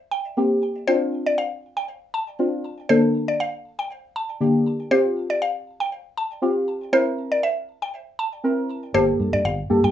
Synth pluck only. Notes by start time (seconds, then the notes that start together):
0.11 G5
0.88 C5
1.26 D5
1.38 F5
1.77 G5
2.14 A5
2.89 C5
3.28 D5
3.40 F5
3.79 G5
4.16 A5
4.91 C5
5.30 D5
5.42 F5
5.80 G5
6.17 A5
6.93 C5
7.32 D5
7.43 E5
7.82 G5
8.19 A5
8.94 C5
9.33 D5
9.45 F5
9.84 G5